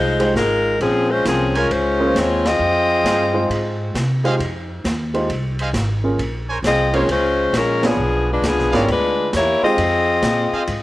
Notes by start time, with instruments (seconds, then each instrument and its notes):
Already playing: upright bass C2, saxophone section G#3 D#4 F4 C5
0.20 grand piano G#3 D#4 F4 G4 C5, ride
0.34 upright bass G#1, saxophone section G#3 D#4 F4 A#4, snare, hi-hat pedal
0.80 upright bass A#1, saxophone section F3 C4 C#4 G#4, ride
1.11 saxophone section G#3 C#4 F4 C5
1.25 upright bass C2, saxophone section F3 C4 C#4 G#4, grand piano A#3 C#4 F4 G#4 C5, snare, hi-hat pedal, ride
1.54 saxophone section G#3 C#4 F4 A#4, trumpet section A#4 C5 C#5 G#5, ride
1.70 upright bass C#2, saxophone section G#3 C#4 F4 C5, ride
2.00 grand piano A#3 C#4 F4 G#4 C5
2.15 upright bass D#2, saxophone section C4, snare, hi-hat pedal, ride
2.19 saxophone section G#3 F4 C#5
2.45 saxophone section C4 F4 G#4 D#5, snare, ride
2.59 upright bass F2
3.04 upright bass G2, trumpet section G#4 C5 D#5 F5, snare, hi-hat pedal, ride
3.34 grand piano G#3 D#4 F4 C5 G5
3.49 upright bass G#2, ride
3.94 upright bass C3, snare, hi-hat pedal, ride
4.24 grand piano G#3 D#4 F4 G4 C5, trumpet section G#4 C5 D#5 F5, ride
4.39 upright bass F2, ride
4.84 upright bass D#2, snare, hi-hat pedal, ride
5.14 grand piano G#3 D#4 F4 G4 C5, ride
5.29 upright bass C2, ride
5.59 trumpet section G#4 C5 D#5 F5, ride
5.73 upright bass G#1, snare, hi-hat pedal, ride
6.04 grand piano A#3 C#4 F4 G#4 A#4
6.18 upright bass A#1, ride
6.48 trumpet section A#4 C5 C#5 G#5
6.63 upright bass C2, saxophone section C4, snare, hi-hat pedal, ride
6.67 saxophone section F4 G#4 D#5
6.92 grand piano A#3 C#4 F4 G#4 C5, trumpet section A#4 C5 C#5 F5, ride
6.96 saxophone section G#3 C4 F4 C#5
7.08 upright bass C#2, saxophone section F4 C5, ride
7.12 saxophone section G#3 C#4
7.52 upright bass A#1, snare, hi-hat pedal, ride
7.57 saxophone section G#3 C#4 F4 A#4
7.83 saxophone section F3 B3 D4, grand piano B3 D4 F4 G#4 C#5, snare, ride
7.87 saxophone section G#4
7.97 upright bass B1
8.32 saxophone section G#3 D4 F4 B4
8.42 upright bass C#2, snare, hi-hat pedal, ride
8.47 saxophone section F3 B3 D4 G#4
8.57 upright bass B1, snare
8.72 upright bass G#1, saxophone section G3 E4 A#4, grand piano B3 D4 F4 G#4 C#5, trumpet section G#4 B4 D5 F5, snare, ride
8.76 saxophone section C#4
8.88 upright bass D2, ride
8.92 saxophone section G#3 D4 F4 B4
9.33 upright bass E2, saxophone section A#3 E4 G4 C#5, snare, hi-hat pedal, ride
9.62 grand piano G#3 D#4 F4 G4 C5, saxophone section C4 F4 G#4 D#5, muted upright bass stroke
9.77 upright bass F2, ride
10.22 upright bass A#2, snare, hi-hat pedal, ride
10.51 trumpet section G#4 C5 D#5 F5, muted upright bass stroke
10.67 upright bass G#2, ride